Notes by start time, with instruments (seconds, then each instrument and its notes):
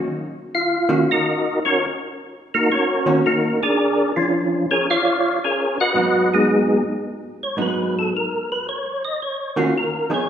0.55 tonewheel organ F4 F5
0.89 hollow-body jazz guitar D#3 A#3 C#4 F#4
1.11 tonewheel organ D#4 F#4 A#4 D#5
1.65 tonewheel organ C#4 F#4 A#4 C#5
2.54 tonewheel organ A#3 D#4 F#4 A#4
2.72 tonewheel organ C#4 F#4 A#4 C#5
3.06 hollow-body jazz guitar D#3 A#3 C#4 F#4
3.26 tonewheel organ A#3 D#4 F#4 A#4
3.63 tonewheel organ D4 G#4 A#4 D5
4.16 tonewheel organ F3 C#4 D4 F4
4.71 tonewheel organ C#4 G#4 A#4 C#5
4.90 tonewheel organ F4 C#5 D5 F5
5.44 tonewheel organ C#4 G#4 A#4 C#5
5.80 tonewheel organ F#4 B4 D#5 F#5
5.94 hollow-body jazz guitar G#2 F#3 B3 D#4
6.34 tonewheel organ G#3 B3 D#4 G#4
7.43 tonewheel organ C#5
7.57 hollow-body jazz guitar G#2 F#3 B3 D#4
7.62 tonewheel organ B4
7.99 tonewheel organ A4
8.17 tonewheel organ A#4
8.52 tonewheel organ B4
8.69 tonewheel organ C#5
9.05 tonewheel organ D#5
9.22 tonewheel organ C#5
9.56 hollow-body jazz guitar D#3 A#3 C#4 F#4, tonewheel organ F4
9.78 tonewheel organ A#4
10.10 hollow-body jazz guitar F3 B3 D#4 G#4
10.14 tonewheel organ C#5